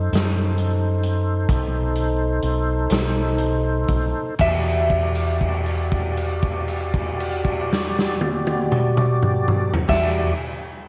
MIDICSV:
0, 0, Header, 1, 5, 480
1, 0, Start_track
1, 0, Key_signature, 1, "minor"
1, 0, Tempo, 904977
1, 792, Tempo, 949367
1, 1752, Tempo, 1015228
1, 2224, Time_signature, 12, 3, 24, 8
1, 5293, End_track
2, 0, Start_track
2, 0, Title_t, "Clean electric guitar"
2, 0, Program_c, 0, 27
2, 0, Note_on_c, 0, 75, 88
2, 1255, Note_off_c, 0, 75, 0
2, 2233, Note_on_c, 0, 76, 79
2, 4748, Note_off_c, 0, 76, 0
2, 4826, Note_on_c, 0, 76, 74
2, 5024, Note_off_c, 0, 76, 0
2, 5293, End_track
3, 0, Start_track
3, 0, Title_t, "Tonewheel organ"
3, 0, Program_c, 1, 16
3, 0, Note_on_c, 1, 63, 63
3, 0, Note_on_c, 1, 69, 62
3, 0, Note_on_c, 1, 72, 62
3, 2203, Note_off_c, 1, 72, 0
3, 2204, Note_off_c, 1, 63, 0
3, 2204, Note_off_c, 1, 69, 0
3, 2229, Note_on_c, 1, 67, 63
3, 2231, Note_on_c, 1, 66, 61
3, 2232, Note_on_c, 1, 74, 65
3, 4746, Note_off_c, 1, 67, 0
3, 4747, Note_off_c, 1, 66, 0
3, 4748, Note_off_c, 1, 74, 0
3, 4819, Note_on_c, 1, 67, 62
3, 4824, Note_on_c, 1, 66, 66
3, 4825, Note_on_c, 1, 74, 66
3, 5034, Note_off_c, 1, 67, 0
3, 5036, Note_off_c, 1, 66, 0
3, 5037, Note_off_c, 1, 74, 0
3, 5293, End_track
4, 0, Start_track
4, 0, Title_t, "Fingered electric bass"
4, 0, Program_c, 2, 33
4, 66, Note_on_c, 2, 42, 89
4, 768, Note_off_c, 2, 42, 0
4, 789, Note_on_c, 2, 35, 102
4, 1243, Note_off_c, 2, 35, 0
4, 1264, Note_on_c, 2, 35, 78
4, 1487, Note_off_c, 2, 35, 0
4, 1506, Note_on_c, 2, 35, 83
4, 1967, Note_off_c, 2, 35, 0
4, 1986, Note_on_c, 2, 35, 76
4, 2095, Note_off_c, 2, 35, 0
4, 2227, Note_on_c, 2, 40, 80
4, 4745, Note_off_c, 2, 40, 0
4, 4824, Note_on_c, 2, 40, 86
4, 5023, Note_off_c, 2, 40, 0
4, 5293, End_track
5, 0, Start_track
5, 0, Title_t, "Drums"
5, 69, Note_on_c, 9, 42, 70
5, 82, Note_on_c, 9, 38, 101
5, 122, Note_off_c, 9, 42, 0
5, 135, Note_off_c, 9, 38, 0
5, 306, Note_on_c, 9, 42, 60
5, 359, Note_off_c, 9, 42, 0
5, 548, Note_on_c, 9, 42, 57
5, 601, Note_off_c, 9, 42, 0
5, 790, Note_on_c, 9, 36, 104
5, 790, Note_on_c, 9, 42, 78
5, 840, Note_off_c, 9, 42, 0
5, 841, Note_off_c, 9, 36, 0
5, 1027, Note_on_c, 9, 42, 57
5, 1077, Note_off_c, 9, 42, 0
5, 1263, Note_on_c, 9, 42, 61
5, 1313, Note_off_c, 9, 42, 0
5, 1503, Note_on_c, 9, 42, 85
5, 1515, Note_on_c, 9, 38, 102
5, 1553, Note_off_c, 9, 42, 0
5, 1566, Note_off_c, 9, 38, 0
5, 1747, Note_on_c, 9, 42, 62
5, 1794, Note_off_c, 9, 42, 0
5, 1984, Note_on_c, 9, 42, 61
5, 1986, Note_on_c, 9, 36, 73
5, 2032, Note_off_c, 9, 42, 0
5, 2033, Note_off_c, 9, 36, 0
5, 2222, Note_on_c, 9, 49, 85
5, 2225, Note_on_c, 9, 36, 102
5, 2269, Note_off_c, 9, 49, 0
5, 2273, Note_off_c, 9, 36, 0
5, 2465, Note_on_c, 9, 36, 55
5, 2466, Note_on_c, 9, 49, 42
5, 2513, Note_off_c, 9, 36, 0
5, 2514, Note_off_c, 9, 49, 0
5, 2583, Note_on_c, 9, 57, 44
5, 2631, Note_off_c, 9, 57, 0
5, 2706, Note_on_c, 9, 36, 59
5, 2706, Note_on_c, 9, 49, 44
5, 2753, Note_off_c, 9, 36, 0
5, 2753, Note_off_c, 9, 49, 0
5, 2824, Note_on_c, 9, 57, 40
5, 2871, Note_off_c, 9, 57, 0
5, 2945, Note_on_c, 9, 49, 41
5, 2946, Note_on_c, 9, 36, 58
5, 2993, Note_off_c, 9, 49, 0
5, 2994, Note_off_c, 9, 36, 0
5, 3067, Note_on_c, 9, 57, 44
5, 3114, Note_off_c, 9, 57, 0
5, 3186, Note_on_c, 9, 49, 48
5, 3187, Note_on_c, 9, 36, 59
5, 3233, Note_off_c, 9, 49, 0
5, 3234, Note_off_c, 9, 36, 0
5, 3306, Note_on_c, 9, 57, 46
5, 3353, Note_off_c, 9, 57, 0
5, 3429, Note_on_c, 9, 36, 61
5, 3429, Note_on_c, 9, 49, 47
5, 3476, Note_off_c, 9, 36, 0
5, 3476, Note_off_c, 9, 49, 0
5, 3554, Note_on_c, 9, 57, 51
5, 3601, Note_off_c, 9, 57, 0
5, 3669, Note_on_c, 9, 36, 59
5, 3670, Note_on_c, 9, 49, 48
5, 3717, Note_off_c, 9, 36, 0
5, 3718, Note_off_c, 9, 49, 0
5, 3802, Note_on_c, 9, 38, 82
5, 3849, Note_off_c, 9, 38, 0
5, 3925, Note_on_c, 9, 38, 83
5, 3972, Note_off_c, 9, 38, 0
5, 4030, Note_on_c, 9, 48, 90
5, 4077, Note_off_c, 9, 48, 0
5, 4153, Note_on_c, 9, 48, 90
5, 4200, Note_off_c, 9, 48, 0
5, 4270, Note_on_c, 9, 47, 89
5, 4317, Note_off_c, 9, 47, 0
5, 4391, Note_on_c, 9, 47, 96
5, 4438, Note_off_c, 9, 47, 0
5, 4510, Note_on_c, 9, 45, 96
5, 4557, Note_off_c, 9, 45, 0
5, 4630, Note_on_c, 9, 45, 99
5, 4678, Note_off_c, 9, 45, 0
5, 4751, Note_on_c, 9, 43, 89
5, 4798, Note_off_c, 9, 43, 0
5, 4823, Note_on_c, 9, 36, 104
5, 4824, Note_on_c, 9, 49, 96
5, 4835, Note_on_c, 9, 38, 93
5, 4870, Note_off_c, 9, 36, 0
5, 4871, Note_off_c, 9, 49, 0
5, 4882, Note_off_c, 9, 38, 0
5, 5293, End_track
0, 0, End_of_file